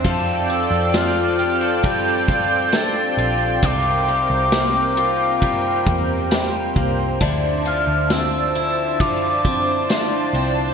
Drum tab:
RD |x-x-x-x-|x-x-x-x-|x-x-x-x-|
TB |--x---x-|--x---x-|--x---x-|
SD |--o---o-|--o---o-|--o---o-|
BD |o---oo--|o---oo-o|o---oo--|